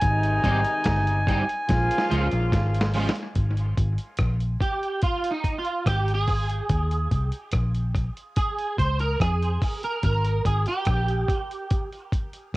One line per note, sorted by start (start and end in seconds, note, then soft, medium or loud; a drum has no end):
0.00 0.39 G#1 loud
0.00 1.25 C3 medium
0.00 1.25 D#3 medium
0.00 1.25 G#3 medium
0.00 1.25 D#4 loud
0.00 2.06 G#5 loud
0.00 kick loud
0.00 closed hi-hat loud
0.23 closed hi-hat medium
0.43 0.63 G#1 loud
0.43 0.59 G3 medium
0.43 0.59 C4 medium
0.43 0.60 D#4 loud
0.43 0.60 G4 loud
0.43 kick loud
0.43 closed hi-hat medium
0.65 closed hi-hat medium
0.84 1.41 G1 medium
0.84 kick loud
0.84 snare loud
0.84 closed hi-hat medium
1.07 closed hi-hat soft
1.27 1.43 G3 medium
1.27 1.43 C4 medium
1.27 1.43 D#4 medium
1.27 1.43 G4 medium
1.27 kick loud
1.27 closed hi-hat medium
1.49 closed hi-hat soft
1.68 1.88 A#1 loud
1.68 2.91 C#3 medium
1.68 2.91 F3 medium
1.68 2.91 A#3 medium
1.68 2.91 F4 loud
1.68 kick loud
1.68 snare medium
1.68 closed hi-hat loud
1.91 closed hi-hat medium
1.98 snare medium
2.10 2.30 C#2 medium
2.10 2.26 F3 medium
2.10 2.26 G#3 medium
2.10 2.26 C#4 medium
2.10 2.26 F4 loud
2.10 closed hi-hat medium
2.31 2.50 A#1 medium
2.31 muted clean electric guitar stroke medium
2.31 closed hi-hat soft
2.52 3.08 G#1 loud
2.52 kick loud
2.52 snare medium
2.52 closed hi-hat medium
2.74 closed hi-hat medium
2.81 snare loud
2.94 3.10 F3 medium
2.94 3.10 G#3 medium
2.94 3.10 C#4 medium
2.94 3.10 F4 medium
2.94 open hi-hat medium
3.09 snare loud
3.16 closed hi-hat medium
3.35 3.73 G#1 loud
3.35 kick loud
3.35 closed hi-hat medium
3.57 closed hi-hat soft
3.77 3.96 G#1 medium
3.77 kick medium
3.77 closed hi-hat medium
3.98 closed hi-hat medium
4.17 4.56 A#1 medium
4.17 kick loud
4.17 cross-stick loud
4.17 closed hi-hat medium
4.40 closed hi-hat soft
4.61 5.03 G4 medium
4.61 kick medium
4.61 closed hi-hat medium
4.83 closed hi-hat soft
5.02 5.32 F4 medium
5.02 kick loud
5.02 closed hi-hat medium
5.24 closed hi-hat medium
5.31 5.57 D#4 medium
5.44 kick medium
5.44 closed hi-hat medium
5.58 5.86 F4 medium
5.65 closed hi-hat soft
5.86 6.60 G#1 medium
5.86 6.12 G4 loud
5.86 kick medium
5.86 cross-stick loud
5.86 closed hi-hat medium
6.08 closed hi-hat soft
6.14 7.35 G#4 loud
6.28 kick medium
6.28 open hi-hat medium
6.49 closed hi-hat medium
6.69 7.06 D#2 loud
6.69 kick loud
6.69 closed hi-hat medium
6.91 closed hi-hat medium
7.11 7.30 C2 medium
7.11 kick medium
7.11 closed hi-hat medium
7.32 closed hi-hat medium
7.51 8.08 A#1 medium
7.51 kick loud
7.51 cross-stick loud
7.51 closed hi-hat medium
7.75 closed hi-hat soft
7.95 kick medium
7.95 closed hi-hat medium
8.17 closed hi-hat soft
8.36 8.78 G#4 medium
8.36 kick loud
8.36 closed hi-hat medium
8.59 closed hi-hat medium
8.78 9.15 C#2 loud
8.78 9.00 C5 loud
8.78 kick medium
8.78 closed hi-hat medium
8.99 9.21 A#4 loud
8.99 closed hi-hat soft
9.20 9.57 F2 loud
9.20 9.84 G#4 medium
9.20 kick loud
9.20 cross-stick loud
9.20 closed hi-hat medium
9.43 closed hi-hat soft
9.62 kick medium
9.62 open hi-hat medium
9.83 10.03 A#4 medium
9.83 closed hi-hat medium
10.03 10.40 G#1 loud
10.03 10.46 A#4 loud
10.03 kick loud
10.03 closed hi-hat loud
10.25 closed hi-hat medium
10.45 10.64 G#1 loud
10.45 10.67 G#4 medium
10.45 kick medium
10.45 closed hi-hat medium
10.66 11.88 G4 medium
10.66 closed hi-hat medium
10.85 11.24 A#1 loud
10.85 kick loud
10.85 cross-stick loud
10.85 closed hi-hat medium
11.09 closed hi-hat soft
11.29 kick loud
11.29 closed hi-hat medium
11.51 closed hi-hat soft
11.70 kick loud
11.70 closed hi-hat medium
11.92 closed hi-hat medium
12.12 kick medium
12.12 closed hi-hat medium
12.33 closed hi-hat soft